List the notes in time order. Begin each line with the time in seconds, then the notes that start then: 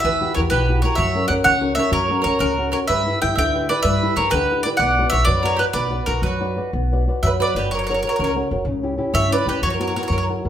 Already playing: E4 F#4 G4
0.00 E3 E5
0.05 E2 B4
0.21 E4 F#4 G4
0.34 E2 E4 F#4 G4 A#4 C#5
0.50 B1 B2 G4 B4
0.69 E4 F#4 G4
0.82 E4 F#4 G4 A#4 C#5
0.95 F#2 F#3 C#5 E5
1.15 C#4 F#4 A#4
1.28 F#2 C#4 F#4 A#4 D5 F#5
1.44 C#2 C#3 C#5 F#5
1.61 C#4 F#4 A#4
1.75 C#4 F#4 A#4 E5
1.79 C#5
1.92 F#2 F#3 A#4 C#5
2.09 C#4 F#4 A#4
2.22 F#2 C#4 F#4 A#4 C#5
2.39 C#2 C#3 F#4 A#4
2.57 C#4 F#4 A#4
2.72 C#4 F#4 A#4 C#5
2.88 G2 G3 B4 E5
3.06 E4 G4 B4
3.22 G2 E4 G4 B4 E5 G5
3.36 D2 D3 E5 G5
3.54 E4 G4 B4
3.69 E4 G4 B4 D5
3.82 G2 G3 B4 E5
4.02 E4 G4 B4
4.16 G2 E4 G4 A#4 B4 C#5
4.30 D2 D3 G4 B4
4.51 E4 G4 B4
4.63 E4 G4 B4 D5
4.77 B1 D5 F#5
4.82 B3
4.98 F#4 B4 D5
5.10 B1 F#4 B4 C#5 D5 E5
5.25 F#2 F#3 B4 D5
5.43 F#4 A#4 B4 C#5 D5
5.57 F#4 G4 B4 D5
5.73 B1 B3 B4 D5
5.90 F#4 D5
6.06 B1 F#4 A#4 B4 D5
6.22 F#2 F#3 F#4 B4
6.40 F#4 B4 D5
6.57 F#4 B4 D5
6.73 B1 B3
6.92 F#4 B4 D5
7.08 F#4 B4 D5
7.23 F#2 F#3 B4 E5
7.40 F#4 B4 D5
7.55 G1 F#4 G4 B4 D5
7.71 F#1 F#3 A#4 C#5
7.79 C#5
7.84 A#4 C#5
7.89 F#4 A#4 C#5
7.94 C#5
7.99 A#4 C#5
8.04 F#4 A#4 C#5
8.09 A#4 C#5
8.16 C#2 C#3 A#4 C#5
8.24 A#4 C#5
8.35 F#4 A#4 C#5
8.51 F#1 F#4 A#4 C#5
8.65 C#2 C#3
8.83 C#4 E4 G4
8.97 C#4 E4 G4
9.13 G2 C#3 C#5 E5
9.31 C#4 E4 G4 B4 D5
9.46 C#2 C#4 E4 G4 B4
9.62 F#2 F#3 F#4 C#5
9.70 A#4 C#5
9.79 B3 E4 F#4 A#4 C#5
9.88 A#4 C#5
9.96 B3 E4 F#4 A#4 C#5
10.03 A#4 C#5
10.08 F#2 C#5
10.12 F#3 A#4
10.18 C#5
10.23 A#4
10.29 E4 F#4 A#4
10.44 F#2 E4 F#4 A#4